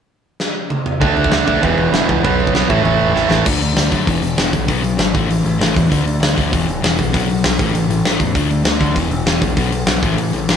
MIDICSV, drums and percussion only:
0, 0, Header, 1, 2, 480
1, 0, Start_track
1, 0, Tempo, 305655
1, 1583, Time_signature, 4, 2, 24, 8
1, 16593, End_track
2, 0, Start_track
2, 0, Title_t, "Drums"
2, 627, Note_on_c, 9, 38, 66
2, 784, Note_off_c, 9, 38, 0
2, 1103, Note_on_c, 9, 47, 74
2, 1260, Note_off_c, 9, 47, 0
2, 1348, Note_on_c, 9, 43, 85
2, 1505, Note_off_c, 9, 43, 0
2, 1594, Note_on_c, 9, 36, 93
2, 1596, Note_on_c, 9, 43, 76
2, 1751, Note_off_c, 9, 36, 0
2, 1753, Note_off_c, 9, 43, 0
2, 1835, Note_on_c, 9, 43, 57
2, 1954, Note_on_c, 9, 36, 74
2, 1992, Note_off_c, 9, 43, 0
2, 2066, Note_on_c, 9, 43, 74
2, 2067, Note_on_c, 9, 38, 100
2, 2111, Note_off_c, 9, 36, 0
2, 2223, Note_off_c, 9, 43, 0
2, 2224, Note_off_c, 9, 38, 0
2, 2312, Note_on_c, 9, 43, 60
2, 2319, Note_on_c, 9, 36, 79
2, 2469, Note_off_c, 9, 43, 0
2, 2476, Note_off_c, 9, 36, 0
2, 2559, Note_on_c, 9, 43, 79
2, 2561, Note_on_c, 9, 36, 92
2, 2716, Note_off_c, 9, 43, 0
2, 2719, Note_off_c, 9, 36, 0
2, 2791, Note_on_c, 9, 43, 58
2, 2948, Note_off_c, 9, 43, 0
2, 3042, Note_on_c, 9, 43, 76
2, 3043, Note_on_c, 9, 38, 99
2, 3199, Note_off_c, 9, 43, 0
2, 3200, Note_off_c, 9, 38, 0
2, 3284, Note_on_c, 9, 36, 81
2, 3286, Note_on_c, 9, 43, 61
2, 3441, Note_off_c, 9, 36, 0
2, 3443, Note_off_c, 9, 43, 0
2, 3526, Note_on_c, 9, 36, 93
2, 3528, Note_on_c, 9, 43, 78
2, 3684, Note_off_c, 9, 36, 0
2, 3685, Note_off_c, 9, 43, 0
2, 3772, Note_on_c, 9, 43, 62
2, 3883, Note_on_c, 9, 36, 77
2, 3929, Note_off_c, 9, 43, 0
2, 4002, Note_on_c, 9, 43, 81
2, 4004, Note_on_c, 9, 38, 95
2, 4040, Note_off_c, 9, 36, 0
2, 4159, Note_off_c, 9, 43, 0
2, 4161, Note_off_c, 9, 38, 0
2, 4235, Note_on_c, 9, 43, 52
2, 4241, Note_on_c, 9, 36, 93
2, 4392, Note_off_c, 9, 43, 0
2, 4398, Note_off_c, 9, 36, 0
2, 4481, Note_on_c, 9, 43, 73
2, 4638, Note_off_c, 9, 43, 0
2, 4722, Note_on_c, 9, 43, 50
2, 4879, Note_off_c, 9, 43, 0
2, 4962, Note_on_c, 9, 38, 51
2, 5119, Note_off_c, 9, 38, 0
2, 5195, Note_on_c, 9, 38, 85
2, 5352, Note_off_c, 9, 38, 0
2, 5431, Note_on_c, 9, 49, 102
2, 5437, Note_on_c, 9, 36, 113
2, 5588, Note_off_c, 9, 49, 0
2, 5594, Note_off_c, 9, 36, 0
2, 5687, Note_on_c, 9, 46, 51
2, 5844, Note_off_c, 9, 46, 0
2, 5914, Note_on_c, 9, 46, 69
2, 5916, Note_on_c, 9, 38, 99
2, 6071, Note_off_c, 9, 46, 0
2, 6073, Note_off_c, 9, 38, 0
2, 6155, Note_on_c, 9, 46, 52
2, 6156, Note_on_c, 9, 36, 73
2, 6313, Note_off_c, 9, 36, 0
2, 6313, Note_off_c, 9, 46, 0
2, 6396, Note_on_c, 9, 36, 88
2, 6399, Note_on_c, 9, 46, 74
2, 6553, Note_off_c, 9, 36, 0
2, 6556, Note_off_c, 9, 46, 0
2, 6638, Note_on_c, 9, 46, 53
2, 6795, Note_off_c, 9, 46, 0
2, 6878, Note_on_c, 9, 46, 72
2, 6879, Note_on_c, 9, 38, 92
2, 7035, Note_off_c, 9, 46, 0
2, 7036, Note_off_c, 9, 38, 0
2, 7112, Note_on_c, 9, 46, 58
2, 7117, Note_on_c, 9, 36, 80
2, 7269, Note_off_c, 9, 46, 0
2, 7274, Note_off_c, 9, 36, 0
2, 7353, Note_on_c, 9, 46, 72
2, 7358, Note_on_c, 9, 36, 81
2, 7510, Note_off_c, 9, 46, 0
2, 7515, Note_off_c, 9, 36, 0
2, 7602, Note_on_c, 9, 46, 56
2, 7759, Note_off_c, 9, 46, 0
2, 7836, Note_on_c, 9, 46, 69
2, 7837, Note_on_c, 9, 38, 93
2, 7993, Note_off_c, 9, 46, 0
2, 7994, Note_off_c, 9, 38, 0
2, 8083, Note_on_c, 9, 36, 98
2, 8084, Note_on_c, 9, 46, 46
2, 8240, Note_off_c, 9, 36, 0
2, 8241, Note_off_c, 9, 46, 0
2, 8331, Note_on_c, 9, 46, 66
2, 8488, Note_off_c, 9, 46, 0
2, 8576, Note_on_c, 9, 46, 47
2, 8733, Note_off_c, 9, 46, 0
2, 8815, Note_on_c, 9, 46, 70
2, 8817, Note_on_c, 9, 38, 95
2, 8972, Note_off_c, 9, 46, 0
2, 8974, Note_off_c, 9, 38, 0
2, 9053, Note_on_c, 9, 36, 93
2, 9064, Note_on_c, 9, 46, 59
2, 9210, Note_off_c, 9, 36, 0
2, 9221, Note_off_c, 9, 46, 0
2, 9293, Note_on_c, 9, 36, 89
2, 9300, Note_on_c, 9, 46, 68
2, 9450, Note_off_c, 9, 36, 0
2, 9457, Note_off_c, 9, 46, 0
2, 9541, Note_on_c, 9, 46, 56
2, 9698, Note_off_c, 9, 46, 0
2, 9782, Note_on_c, 9, 46, 68
2, 9783, Note_on_c, 9, 38, 104
2, 9939, Note_off_c, 9, 46, 0
2, 9940, Note_off_c, 9, 38, 0
2, 10014, Note_on_c, 9, 36, 81
2, 10019, Note_on_c, 9, 46, 52
2, 10171, Note_off_c, 9, 36, 0
2, 10176, Note_off_c, 9, 46, 0
2, 10254, Note_on_c, 9, 36, 98
2, 10256, Note_on_c, 9, 46, 77
2, 10411, Note_off_c, 9, 36, 0
2, 10413, Note_off_c, 9, 46, 0
2, 10504, Note_on_c, 9, 46, 49
2, 10661, Note_off_c, 9, 46, 0
2, 10743, Note_on_c, 9, 46, 70
2, 10744, Note_on_c, 9, 38, 102
2, 10900, Note_off_c, 9, 46, 0
2, 10901, Note_off_c, 9, 38, 0
2, 10974, Note_on_c, 9, 36, 84
2, 10983, Note_on_c, 9, 46, 59
2, 11131, Note_off_c, 9, 36, 0
2, 11140, Note_off_c, 9, 46, 0
2, 11214, Note_on_c, 9, 36, 95
2, 11217, Note_on_c, 9, 46, 74
2, 11371, Note_off_c, 9, 36, 0
2, 11374, Note_off_c, 9, 46, 0
2, 11457, Note_on_c, 9, 46, 54
2, 11614, Note_off_c, 9, 46, 0
2, 11685, Note_on_c, 9, 46, 76
2, 11686, Note_on_c, 9, 38, 105
2, 11842, Note_off_c, 9, 46, 0
2, 11843, Note_off_c, 9, 38, 0
2, 11925, Note_on_c, 9, 36, 96
2, 11930, Note_on_c, 9, 46, 51
2, 12082, Note_off_c, 9, 36, 0
2, 12087, Note_off_c, 9, 46, 0
2, 12169, Note_on_c, 9, 46, 75
2, 12326, Note_off_c, 9, 46, 0
2, 12414, Note_on_c, 9, 46, 50
2, 12571, Note_off_c, 9, 46, 0
2, 12647, Note_on_c, 9, 46, 58
2, 12649, Note_on_c, 9, 38, 100
2, 12804, Note_off_c, 9, 46, 0
2, 12806, Note_off_c, 9, 38, 0
2, 12876, Note_on_c, 9, 36, 84
2, 12876, Note_on_c, 9, 46, 53
2, 13033, Note_off_c, 9, 36, 0
2, 13033, Note_off_c, 9, 46, 0
2, 13114, Note_on_c, 9, 36, 97
2, 13115, Note_on_c, 9, 46, 67
2, 13271, Note_off_c, 9, 36, 0
2, 13272, Note_off_c, 9, 46, 0
2, 13361, Note_on_c, 9, 46, 48
2, 13518, Note_off_c, 9, 46, 0
2, 13587, Note_on_c, 9, 46, 70
2, 13589, Note_on_c, 9, 38, 110
2, 13744, Note_off_c, 9, 46, 0
2, 13746, Note_off_c, 9, 38, 0
2, 13830, Note_on_c, 9, 36, 84
2, 13837, Note_on_c, 9, 46, 48
2, 13987, Note_off_c, 9, 36, 0
2, 13994, Note_off_c, 9, 46, 0
2, 14069, Note_on_c, 9, 36, 84
2, 14074, Note_on_c, 9, 46, 77
2, 14226, Note_off_c, 9, 36, 0
2, 14231, Note_off_c, 9, 46, 0
2, 14308, Note_on_c, 9, 46, 55
2, 14465, Note_off_c, 9, 46, 0
2, 14553, Note_on_c, 9, 46, 64
2, 14554, Note_on_c, 9, 38, 101
2, 14710, Note_off_c, 9, 46, 0
2, 14711, Note_off_c, 9, 38, 0
2, 14790, Note_on_c, 9, 36, 96
2, 14792, Note_on_c, 9, 46, 59
2, 14947, Note_off_c, 9, 36, 0
2, 14949, Note_off_c, 9, 46, 0
2, 15028, Note_on_c, 9, 36, 89
2, 15030, Note_on_c, 9, 46, 74
2, 15185, Note_off_c, 9, 36, 0
2, 15187, Note_off_c, 9, 46, 0
2, 15270, Note_on_c, 9, 46, 62
2, 15427, Note_off_c, 9, 46, 0
2, 15497, Note_on_c, 9, 46, 81
2, 15499, Note_on_c, 9, 38, 100
2, 15655, Note_off_c, 9, 46, 0
2, 15656, Note_off_c, 9, 38, 0
2, 15745, Note_on_c, 9, 46, 53
2, 15747, Note_on_c, 9, 36, 106
2, 15902, Note_off_c, 9, 46, 0
2, 15904, Note_off_c, 9, 36, 0
2, 15990, Note_on_c, 9, 46, 70
2, 16147, Note_off_c, 9, 46, 0
2, 16225, Note_on_c, 9, 46, 50
2, 16382, Note_off_c, 9, 46, 0
2, 16471, Note_on_c, 9, 46, 64
2, 16473, Note_on_c, 9, 38, 100
2, 16593, Note_off_c, 9, 38, 0
2, 16593, Note_off_c, 9, 46, 0
2, 16593, End_track
0, 0, End_of_file